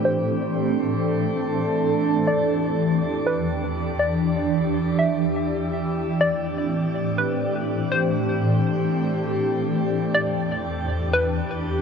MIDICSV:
0, 0, Header, 1, 3, 480
1, 0, Start_track
1, 0, Key_signature, 0, "minor"
1, 0, Tempo, 491803
1, 57, Time_signature, 4, 2, 24, 8
1, 11533, End_track
2, 0, Start_track
2, 0, Title_t, "Synth pluck"
2, 0, Program_c, 0, 84
2, 50, Note_on_c, 0, 72, 103
2, 1454, Note_off_c, 0, 72, 0
2, 2221, Note_on_c, 0, 74, 82
2, 3139, Note_off_c, 0, 74, 0
2, 3186, Note_on_c, 0, 71, 87
2, 3410, Note_off_c, 0, 71, 0
2, 3896, Note_on_c, 0, 74, 91
2, 4817, Note_off_c, 0, 74, 0
2, 4865, Note_on_c, 0, 76, 72
2, 5312, Note_off_c, 0, 76, 0
2, 6059, Note_on_c, 0, 74, 84
2, 6979, Note_off_c, 0, 74, 0
2, 7011, Note_on_c, 0, 71, 77
2, 7242, Note_off_c, 0, 71, 0
2, 7730, Note_on_c, 0, 72, 106
2, 9134, Note_off_c, 0, 72, 0
2, 9900, Note_on_c, 0, 74, 81
2, 10819, Note_off_c, 0, 74, 0
2, 10866, Note_on_c, 0, 71, 85
2, 11090, Note_off_c, 0, 71, 0
2, 11533, End_track
3, 0, Start_track
3, 0, Title_t, "Ambient pad"
3, 0, Program_c, 1, 92
3, 0, Note_on_c, 1, 45, 80
3, 0, Note_on_c, 1, 52, 74
3, 0, Note_on_c, 1, 57, 75
3, 0, Note_on_c, 1, 60, 71
3, 0, Note_on_c, 1, 62, 72
3, 55, Note_on_c, 1, 69, 89
3, 1937, Note_off_c, 1, 45, 0
3, 1937, Note_off_c, 1, 57, 0
3, 1938, Note_off_c, 1, 60, 0
3, 1957, Note_off_c, 1, 69, 0
3, 1976, Note_on_c, 1, 67, 88
3, 1977, Note_on_c, 1, 40, 82
3, 5778, Note_off_c, 1, 40, 0
3, 5815, Note_on_c, 1, 45, 80
3, 5815, Note_on_c, 1, 57, 75
3, 5815, Note_on_c, 1, 60, 74
3, 9617, Note_off_c, 1, 45, 0
3, 9617, Note_off_c, 1, 52, 0
3, 9617, Note_off_c, 1, 57, 0
3, 9617, Note_off_c, 1, 60, 0
3, 9617, Note_off_c, 1, 62, 0
3, 9657, Note_on_c, 1, 40, 81
3, 9657, Note_on_c, 1, 52, 72
3, 9657, Note_on_c, 1, 62, 74
3, 11533, Note_off_c, 1, 40, 0
3, 11533, Note_off_c, 1, 52, 0
3, 11533, Note_off_c, 1, 62, 0
3, 11533, Note_off_c, 1, 67, 0
3, 11533, End_track
0, 0, End_of_file